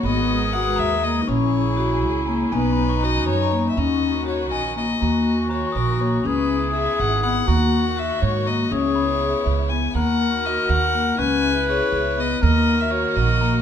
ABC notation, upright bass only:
X:1
M:5/8
L:1/8
Q:1/4=121
K:Ebphr
V:1 name="Upright bass" clef=bass
A,,,3 E,,2 | B,,,3 D,,2 | =B,,,3 ^F,,2 | E,,3 B,,,2 |
E,,3 B,,,2 | D,,3 A,,,2 | E,,3 A,,2 | D,,3 D,,2 |
E,,3 E,,2 | D,,3 D,,2 | E,,3 B,,,2 |]